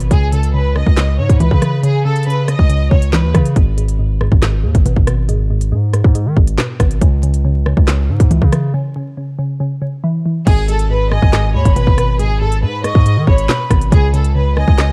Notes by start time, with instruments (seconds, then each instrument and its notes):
Already playing: synth pluck G#2 B2
0.00 closed hi-hat
0.11 808-style bass C#2, synth pluck C#3, violin section G#4, kick, closed hi-hat
0.32 synth pluck C#3, violin section A4, closed hi-hat
0.43 closed hi-hat
0.54 synth pluck C#3, violin section B4
0.76 synth pluck C#3, violin section D#5, cross-stick
0.86 808-style bass C#2, kick
0.97 synth pluck C#3, snare, clap, closed hi-hat
1.19 808-style bass G#2, synth pluck C#3, violin section C#5
1.29 808-style bass G#2, kick, closed hi-hat
1.40 808-style bass C#2, synth pluck E3, violin section B4, closed hi-hat
1.51 808-style bass C#3, kick
1.62 synth pluck E3, cross-stick, closed hi-hat
1.83 synth pluck C#3, violin section G#4, closed hi-hat
2.05 synth pluck C#3, violin section A4
2.16 closed hi-hat
2.23 synth pluck C#3, violin section B4, closed hi-hat
2.30 closed hi-hat
2.48 synth pluck C#3, violin section D#5, cross-stick, closed hi-hat
2.59 808-style bass C#2, kick
2.70 synth pluck C#3, closed hi-hat
2.91 808-style bass C#2, synth pluck C#3, violin section C#5, kick
3.02 closed hi-hat
3.13 synth pluck E3, violin section B4, snare, clap
3.24 808-style bass D#2
3.35 808-style bass C#3, synth pluck E3, kick, cross-stick, closed hi-hat
3.45 closed hi-hat
3.56 808-style bass G#1, synth pluck G#2, kick, closed hi-hat
3.78 synth pluck G#2, closed hi-hat
3.88 closed hi-hat
3.99 synth pluck G#2
4.21 synth pluck G#2, cross-stick
4.32 808-style bass G#1, kick
4.42 synth pluck G#2, snare, clap, closed hi-hat
4.64 808-style bass D#2, synth pluck G#2
4.75 808-style bass G#1, kick, closed hi-hat
4.86 808-style bass G#1, synth pluck B2, closed hi-hat
4.96 808-style bass G#1, kick
5.07 synth pluck B2, cross-stick, closed hi-hat
5.29 synth pluck G#2, closed hi-hat
5.50 synth pluck G#2
5.61 closed hi-hat
5.72 808-style bass G#2, synth pluck G#2
5.93 synth pluck G#2, cross-stick, closed hi-hat
6.04 808-style bass G#2, kick
6.15 synth pluck G#2, closed hi-hat
6.26 808-style bass D#3
6.36 808-style bass G#1, synth pluck G#2, kick
6.47 closed hi-hat
6.58 synth pluck B2, snare, clap
6.80 808-style bass G#1, synth pluck B2, kick, cross-stick, closed hi-hat
6.91 closed hi-hat
7.01 808-style bass C#2, synth pluck C#3, kick, closed hi-hat
7.23 synth pluck C#3, closed hi-hat
7.34 closed hi-hat
7.45 synth pluck C#3
7.66 synth pluck C#3, cross-stick
7.77 808-style bass C#2, kick
7.88 synth pluck C#3, snare, clap, closed hi-hat
8.09 808-style bass G#2, synth pluck C#3
8.20 808-style bass G#2, kick, closed hi-hat
8.31 808-style bass C#2, synth pluck E3, closed hi-hat
8.42 808-style bass C#3, kick
8.52 synth pluck E3, cross-stick, closed hi-hat
8.74 synth pluck C#3
8.96 synth pluck C#3
9.17 synth pluck C#3
9.39 synth pluck C#3
9.60 synth pluck C#3
9.82 synth pluck C#3
10.04 synth pluck E3
10.26 synth pluck E3
10.47 808-style bass G#1, synth pluck G#2, violin section G#4, kick, closed hi-hat, crash
10.68 synth pluck G#2, violin section A4, closed hi-hat
10.79 closed hi-hat
10.90 synth pluck G#2, violin section B4
11.11 synth pluck G#2, violin section D#5, flute G#5, cross-stick
11.22 808-style bass G#1, kick
11.33 synth pluck G#2, snare, clap, closed hi-hat
11.54 808-style bass D#2, synth pluck G#2, violin section C#5, flute B5
11.65 808-style bass G#1, kick, closed hi-hat
11.76 808-style bass G#1, synth pluck B2, violin section B4, closed hi-hat
11.87 808-style bass G#1, kick
11.98 synth pluck B2, cross-stick, closed hi-hat
12.19 synth pluck G#2, violin section G#4, closed hi-hat
12.41 synth pluck G#2, violin section A4
12.52 closed hi-hat
12.63 808-style bass G#2, synth pluck G#2, violin section B4
12.84 synth pluck G#2, violin section D#5, flute C#6, cross-stick, closed hi-hat
12.95 808-style bass G#2, kick
13.06 synth pluck G#2, closed hi-hat
13.17 808-style bass D#3
13.27 808-style bass G#1, synth pluck G#2, violin section C#5, flute B5, kick
13.38 closed hi-hat
13.49 synth pluck B2, violin section B4, snare, clap
13.71 808-style bass G#1, synth pluck B2, kick, cross-stick, closed hi-hat
13.81 closed hi-hat
13.92 808-style bass C#2, synth pluck C#3, violin section G#4, kick, closed hi-hat
14.13 synth pluck C#3, violin section A4, closed hi-hat
14.24 closed hi-hat
14.35 synth pluck C#3, violin section B4
14.57 synth pluck C#3, violin section D#5, flute G#5, cross-stick
14.68 808-style bass C#2, kick
14.78 synth pluck C#3, snare, clap, closed hi-hat